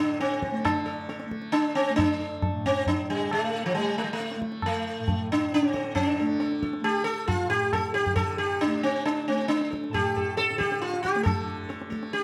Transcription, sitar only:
Already playing: D4 A4
0.20 C4 A4
0.65 D4
0.86 A4
1.09 A4
1.52 D4
1.75 C4
1.96 D4
2.20 A4
2.66 C4
2.88 D4
3.10 G3
3.33 A3
3.55 A4
3.66 F3
3.74 G3
3.98 A3
4.04 G3
4.13 A3
4.66 A3
5.32 D4
5.54 C#4
5.69 C4
5.76 A4
5.95 D4
6.20 A4
6.40 A4
6.62 A4
6.84 G4
7.04 A4
7.28 F4
7.50 G4
7.73 A4
7.94 G4
8.16 A4
8.38 G4
8.61 D4
8.83 C4
9.05 D4
9.28 C4
9.48 D4
9.70 A4
9.93 G4 A4
10.16 A4
10.37 A4
10.58 G4 A4
10.81 F4 A4
11.03 G4
11.23 A4
11.69 A4
11.90 A4
12.13 G4

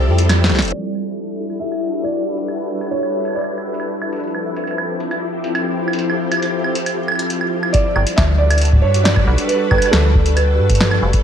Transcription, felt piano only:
Already playing: G4
0.72 D5
1.60 E5
2.04 D5
2.91 C#5
3.35 D5
7.73 D5
8.16 E5
8.38 D5
8.82 C#5
9.04 D5
9.47 B4
9.91 A4
10.35 B4

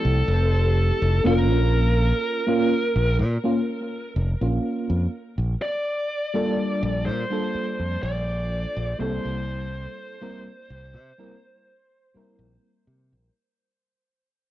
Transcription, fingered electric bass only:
0.05 C2
0.28 F1
1.02 F1
1.25 F1
1.50 A#1
2.95 A#1
3.19 A#2
4.16 F1
4.41 A#1
4.90 F2
5.38 A#1
6.83 A#1
7.07 A#2
7.55 muted fingered electric bass stroke
7.80 F2
8.03 A#1
8.77 A#1
9.00 C2
9.25 C2
10.70 C2
10.94 C3
12.15 muted fingered electric bass stroke
12.39 A#1
12.87 C3
13.12 A#1

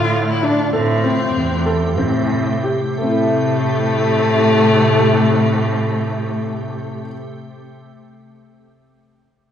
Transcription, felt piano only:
Already playing: A4
0.43 D4
0.73 A4
1.04 C4
1.66 A4
1.98 C4
2.64 G4
2.98 A3 C4
3.06 E4 A4

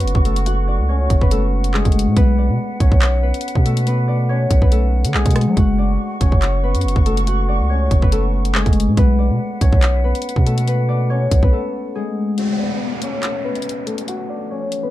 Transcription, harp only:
Already playing: B3 C#4 F#4 G#4 B4 C#5 F#5
0.25 A3 A4
0.46 F#4 F#5
0.68 D4 D5
0.89 C#4 C#5
1.21 B3 B4
1.31 A3 A4
1.74 G#3 G#4
2.17 B3 B4
2.38 D4 D5
2.80 C#4 C#5
3.23 B3 B4
3.65 A3 A4
3.87 B3 B4
4.08 D4 D5
4.29 C#4 C#5
4.62 B3 B4
4.72 A3 A4
5.14 G#3 G#4
5.57 F#4 F#5
5.78 D4 D5
6.21 C#4 C#5
6.63 B3 B4
7.06 A3 A4
7.27 F#4 F#5
7.48 D4 D5
7.70 C#4 C#5
8.02 B3 B4
8.12 A3 A4
8.55 G#3 G#4
8.97 B3 B4
9.19 D4 D5
9.61 C#4 C#5
10.04 B3 B4
10.46 A3 A4
10.68 B3 B4
10.89 D4 D5
11.10 C#4 C#5
11.43 B3 B4
11.53 A3 A4
11.95 G#3 G#4
12.38 F#4 F#5
12.59 D4 D5
13.02 C#4 C#5
13.44 B3 B4
13.87 A3 A4
14.08 F#4 F#5
14.29 D4 D5
14.51 C#4 C#5
14.83 B3 B4

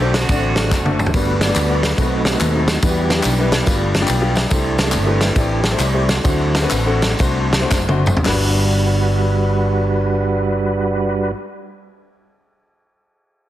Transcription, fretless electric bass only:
Already playing: B1
0.29 A1
0.71 F#1
1.14 G1
1.55 D2
1.98 B1
2.40 D#2
2.83 E2
3.25 B1
3.67 G1
4.09 B1
4.52 C2
4.93 G1
5.36 A1
5.79 C2
6.25 D2
6.71 A1
7.20 C2
7.71 F#1
8.26 G1

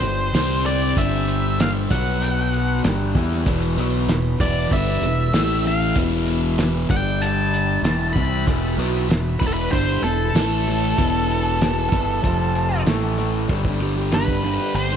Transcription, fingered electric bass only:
0.02 G1
0.33 C2
0.97 G1
1.91 B1
2.84 G1
3.15 E2
3.46 E1
3.76 B1
4.07 E1
4.39 E1
4.71 G1
5.02 E1
5.33 A1
5.96 E1
6.90 G1
7.82 E1
8.16 C2
8.47 E1
8.77 B1
9.09 E1
9.41 E1
9.73 G1
10.02 E1
10.33 A1
10.98 E1
11.92 G1
12.24 F1
12.86 A1
13.49 G1
14.74 G1

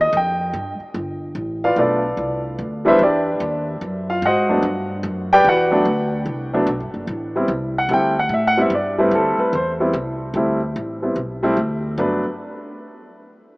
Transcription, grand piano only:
0.01 D#5
0.17 G5
1.64 F4 B4 D5 F5
1.77 A3 B3 D4 F4 A4 B4 D5
2.85 G3 B3 D4 E4 B4 C5 E5
3.03 D4 G4 B4 D5
4.10 F4 F5
4.25 F#4 C5 D#5 F#5
4.49 F#3 A3 B3 D4
5.33 G4 B4 D5 G5
5.49 F#4 B4 D5 F#5
5.71 F#3 A3 B3 D4
6.53 F#3 A3 B3 D4
7.36 G3 B3 C4 E4
7.78 F#5
7.90 G3 A3 C4 E4 G5
8.19 F#5
8.34 E5
8.47 F#5
8.57 G3 B3 C4 E4 E5
8.75 D5
8.98 G3 A3 C4 E4 B4
9.15 A4
9.40 B4
9.55 C5
9.80 G3 B3 C4 E4
10.35 G3 A3 C4 E4
11.02 G3 B3 C4 E4
11.43 G3 A3 C4 E4
11.98 F#3 A3 B3 D4 B4

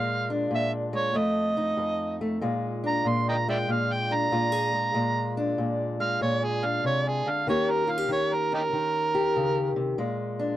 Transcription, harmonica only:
Already playing: F5
0.55 E5
0.96 C#5
1.17 D#5
2.88 A#5
3.08 C6
3.29 D#5 G5 A#5
3.49 D5 E5 G5
3.72 F5
3.92 G5
4.14 A#5
6.01 F5
6.22 C#5
6.44 G#4
6.65 F5
6.86 C#5
7.08 G#4
7.30 F5
7.49 C#5
7.71 A#4
7.91 F5
8.12 C#5
8.34 A#4
8.54 D#4 G4 A#4

